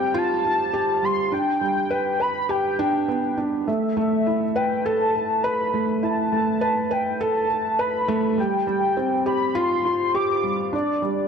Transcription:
Already playing: felt piano G3 C4 G4, soft synth lead G5
0.14 felt piano F4, soft synth lead A5
0.44 felt piano F4
0.73 felt piano G4
1.03 felt piano G3, soft synth lead C6
1.32 felt piano D4, soft synth lead G5
1.61 felt piano G3
1.91 felt piano B4
2.20 felt piano B4, soft synth lead B5
2.49 felt piano G4, soft synth lead G5
2.79 felt piano D4
3.08 felt piano B3
3.37 felt piano D4
3.67 felt piano A3, soft synth lead E5
3.97 felt piano A3
4.27 felt piano E4
4.56 felt piano B4, soft synth lead G5
4.85 felt piano A4, soft synth lead A5
5.15 felt piano A4
5.43 felt piano B4, soft synth lead B5
5.74 felt piano A3
6.03 felt piano E4, soft synth lead A5
6.32 felt piano A3
6.61 felt piano B4
6.91 felt piano B4, soft synth lead G5
7.21 felt piano A4, soft synth lead A5
7.50 felt piano A4
7.79 felt piano B4, soft synth lead B5
8.08 felt piano A3
8.38 felt piano G3, soft synth lead G5
8.67 felt piano G3
8.97 felt piano C4
9.26 felt piano G4, soft synth lead B5
9.55 felt piano F4, soft synth lead C6
9.85 felt piano F4
10.15 felt piano G4, soft synth lead D6
10.43 felt piano G3
10.73 felt piano D4, soft synth lead D5
11.02 felt piano G3

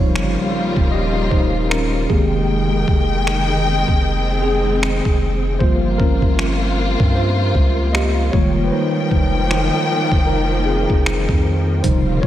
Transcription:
Already playing: 808-style bass D#1, string section C#3 G3 A#3 F4, tine electric piano C#3 F3 G3 C4 D#4 F4 C5 C#5, impact
0.15 808-style bass G1, finger snap
0.76 808-style bass D#1, kick
0.92 tine electric piano G4 D#5
1.31 808-style bass D#1, tine electric piano D#4 C5, kick
1.70 tine electric piano C#4 A#4, finger snap
2.09 808-style bass F1, tine electric piano D#3 G#3 A#3 C4 G4 G#4, string section D#3 G#3 A#3 G5, kick
2.88 808-style bass F1, kick
3.27 finger snap
3.66 string section C4
3.88 808-style bass F1, kick
4.42 tine electric piano C4 G#4
4.83 finger snap
5.05 808-style bass F1, kick
5.59 808-style bass G1, string section C3 A#3 F4, tine electric piano F3 G3 A#3 F4 C5, kick
5.98 808-style bass G1, tine electric piano C#4 A#4, kick
6.22 kick
6.39 finger snap
7.00 808-style bass G2, kick
7.15 tine electric piano F4 C5
7.55 808-style bass C#2, kick
7.87 tine electric piano F5
7.93 tine electric piano G4 D#5, finger snap
8.32 808-style bass F1, tine electric piano D#3 G3 G#3 A#3 F4 C#5, string section D#3 F3 A#3 G5, kick
8.65 tine electric piano B4
8.71 tine electric piano D#4 C5
9.11 808-style bass F1, kick
9.49 tine electric piano D#4 C5, finger snap
10.12 808-style bass F1, kick
10.27 tine electric piano D#4 A#4
10.66 tine electric piano C4 G#4
10.90 808-style bass F1, kick
11.06 finger snap
11.29 808-style bass F2, kick
11.83 808-style bass D#1, tine electric piano C3 C#3 F3 G3 D#4 C5, string section D#3 G3 A#3 F4, kick, closed hi-hat
12.22 808-style bass D#1, tine electric piano F4 C#5, kick

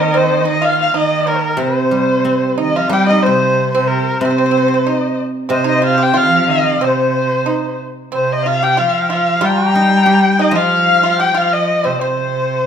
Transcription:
Already playing: cello D#3, guzheng D#3 A#3 D#4, pipa C4, erhu D#5
0.01 erhu A#4
0.14 pipa C4, erhu C5
0.45 pipa D#4
0.50 erhu D#5
0.61 pipa F4, erhu F5
0.79 erhu F5
0.94 cello D#3, pipa D#4, erhu D#5
1.27 pipa A#3, erhu A#4
1.57 guzheng C3, cello C3, pipa C4, erhu C5
1.62 erhu C5
1.91 guzheng G3
2.25 guzheng C4
2.58 cello D#3, pipa D#4, erhu D#5
2.76 cello F3, pipa F4, erhu F5
2.89 guzheng G3, cello G3, pipa G4 A#4, erhu G5
3.06 pipa F4, erhu D#5
3.11 pipa D#4
3.23 pipa C4, erhu C5
3.28 cello C3
3.71 pipa C4, erhu C5
3.77 cello C3
3.88 erhu A#4
4.21 guzheng C3, cello C3, erhu C5
4.25 pipa C4
4.31 pipa C4
4.38 pipa C4
4.46 pipa C4
4.51 pipa C4
4.57 pipa C4
4.68 pipa C4
4.74 pipa C4
4.87 pipa D#4, erhu D#5
5.49 guzheng C3, cello C3, pipa C4, erhu C5 D#5
5.64 pipa D#4
5.68 erhu D#5
5.82 pipa F4
5.86 erhu F5
5.98 pipa G4
6.02 erhu G5
6.14 cello F3, pipa F4, erhu F5
6.48 cello D#3, erhu D#5
6.81 cello C3, pipa C4, erhu C5
7.46 pipa D#4
8.12 cello C3, pipa C4, erhu C5
8.33 erhu D#5
8.43 pipa F4, erhu F5
8.47 erhu F5
8.63 pipa G4, erhu G5
8.77 cello F3, pipa F4, erhu F5
9.03 erhu G5
9.10 pipa F4, erhu F5
9.41 guzheng G3, cello G3, pipa F4, erhu G5
9.46 erhu G5
9.50 erhu A#5
9.58 pipa F#4, erhu G5
9.66 pipa G4, erhu A#5
9.74 guzheng D#4, erhu G5
9.81 erhu A#5
9.88 erhu G5
9.97 erhu A#5
10.06 guzheng G4, erhu G5
10.13 erhu A#5
10.20 erhu G5
10.39 pipa D#4, erhu D#5
10.47 guzheng F3, erhu G5
10.53 cello F3, pipa F4, erhu F5
11.03 pipa F4
11.19 pipa G4, erhu G5
11.34 cello F3, pipa F4, erhu F5
11.52 erhu D#5
11.84 cello C3, pipa C4, erhu C5
12.00 cello C3, pipa C4, erhu C5

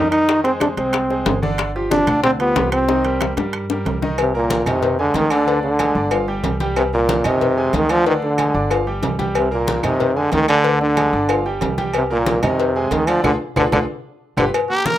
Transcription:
Already playing: upright bass F2, grand piano G3 G4 A#4
0.11 trombone D#4, high conga, high timbale, claves
0.28 grand piano D#3 D#4 D#5, high bongo, high conga
0.44 grand piano G#3 G#4 C5, trombone C4, high bongo, high conga, high timbale
0.60 trombone D4, high bongo, high conga, high timbale, low timbale, claves
0.77 upright bass C2, grand piano G#3 G#4 C5, trombone C4, high bongo, high conga, high timbale
0.93 high bongo, high conga, high timbale, claves
1.10 grand piano G#3 G#4 C5, high bongo, high conga
1.26 upright bass G1, high bongo, low bongo, high conga, high timbale, low timbale
1.42 grand piano D3 D4 D5, high conga
1.58 high bongo, high conga, high timbale, claves
1.76 grand piano F3 F4 G4, high conga
1.91 trombone D4, high bongo, high conga, high timbale, low timbale
2.07 upright bass D2, grand piano D3 D4 D5, high conga, low conga, high timbale, claves
2.23 trombone C4, high bongo, high conga, low conga
2.39 grand piano F3 F4 G4, trombone B3, high conga, high timbale
2.56 upright bass C2, grand piano F3 F4 G4, high bongo, low bongo, high conga, high timbale, low timbale
2.72 trombone C4, high conga, high timbale, claves
2.88 grand piano D#3 D#4 D#5, high bongo, high conga
3.05 grand piano G3 G4 A#4, high conga, high timbale
3.21 high bongo, high conga, high timbale, low timbale, claves
3.37 upright bass G2, grand piano G3 G4 A#4, low bongo, high conga, high timbale
3.53 high conga, high timbale, claves
3.70 grand piano G3 G4 A#4, low bongo, high conga
3.85 upright bass C2, high conga, high timbale, low timbale
4.02 grand piano D#3 D#4 D#5, low bongo, high conga
4.18 trombone C3, cowbell, high conga, low agogo, claves
4.34 trombone A#2, grand piano A#3 A#4 A#5, high conga
4.50 cowbell, high conga, low timbale, low agogo
4.66 upright bass F2, trombone C3, grand piano D#3 D#4 D#5, cowbell, high conga, low conga, low agogo, claves
4.82 cowbell, high conga, low conga
4.99 trombone D3, grand piano G#3 G#4 G#5, high conga
5.14 upright bass D2, trombone D#3, cowbell, high conga, low timbale, low agogo
5.30 grand piano D3 D4 D5, trombone D3, cowbell, high conga, low agogo, claves
5.47 grand piano D3 D4 D5, cowbell, high conga
5.63 trombone D3, high conga
5.79 grand piano G#3 G#4 G#5, cowbell, high conga, low timbale, low agogo, claves
5.95 upright bass G1, grand piano D4 D5 D6, high conga
6.11 grand piano F3 F4 F5, cowbell, high conga, low agogo, claves
6.28 grand piano G3 G4 G5, high conga
6.44 upright bass C2, cowbell, high conga, low timbale, low agogo
6.60 grand piano G3 G4 G5, cowbell, high conga
6.76 trombone C3, cowbell, high conga, low agogo, claves
6.93 trombone A#2, grand piano A#3 A#4 A#5, high conga
7.09 cowbell, high conga, low timbale, low agogo
7.24 upright bass F2, trombone C3, grand piano D#3 D#4 D#5, cowbell, high conga, low conga, low agogo, claves
7.41 cowbell, high conga, low conga
7.57 grand piano G#3 G#4 G#5, high conga
7.73 upright bass D2, trombone D#3, cowbell, high conga, low timbale, low agogo
7.89 grand piano D3 D4 D5, trombone F3, cowbell, high conga, low agogo, claves
8.05 grand piano D3 D4 D5, trombone D#3, cowbell, high conga
8.22 trombone D3, high conga
8.38 grand piano G#3 G#4 G#5, cowbell, high conga, low timbale, low agogo, claves
8.54 upright bass G1, grand piano D4 D5 D6, high conga
8.71 grand piano F3 F4 F5, cowbell, high conga, low agogo, claves
8.87 grand piano G3 G4 G5, high conga
9.02 upright bass C2, cowbell, high conga, low timbale, low agogo
9.19 grand piano G3 G4 G5, cowbell, high conga
9.35 trombone C3, cowbell, high conga, low agogo, claves
9.51 trombone A#2, grand piano A#3 A#4 A#5, high conga
9.67 cowbell, high conga, low timbale, low agogo
9.83 upright bass F2, trombone C3, grand piano D#3 D#4 D#5, cowbell, high conga, low conga, low agogo, claves
10.00 cowbell, high conga, low conga
10.16 trombone D3, grand piano G#3 G#4 G#5, high conga
10.32 upright bass D2, trombone D#3, cowbell, high conga, low timbale, low agogo
10.48 grand piano D3 D4 D5, trombone D3, cowbell, high conga, low agogo, claves
10.64 grand piano D3 D4 D5, cowbell, high conga
10.81 trombone D3, high conga
10.97 grand piano G#3 G#4 G#5, cowbell, high conga, low timbale, low agogo, claves
11.13 upright bass G1, grand piano D4 D5 D6, high conga
11.29 grand piano F3 F4 F5, cowbell, high conga, low agogo, claves
11.46 grand piano G3 G4 G5, high conga
11.61 upright bass C2, cowbell, high conga, low timbale, low agogo
11.78 grand piano G3 G4 G5, cowbell, high conga
11.94 trombone C3, cowbell, high conga, low agogo, claves
12.10 trombone A#2, grand piano A#3 A#4 A#5, high conga
12.26 cowbell, high conga, low timbale, low agogo
12.43 upright bass F2, trombone C3, grand piano D#3 D#4 D#5, cowbell, high conga, low conga, low agogo, claves
12.59 cowbell, high conga
12.76 grand piano G#3 G#4 G#5, high conga
12.91 upright bass D2, trombone D#3, cowbell, high conga, low timbale, low agogo
13.07 grand piano D3 D4 D5, trombone F3, cowbell, high conga, low agogo, claves
13.24 upright bass D2, trombone D3, grand piano D4 F4 G#4, cowbell, low conga, high timbale, claves
13.56 upright bass D2, trombone D3, grand piano D4 F4 G#4, cowbell, low conga, high timbale, claves
13.72 upright bass D2, trombone D3, grand piano D4 F4 G#4, cowbell, low conga, high timbale, claves
14.37 upright bass G1, trombone D3, grand piano F4 G4 B4, cowbell, low conga, high timbale, claves
14.54 cowbell, high conga, low agogo, claves
14.70 grand piano A#3 A#4 A#5, trumpet G4, high conga
14.86 trumpet A#4, cowbell, high conga, low timbale, low agogo

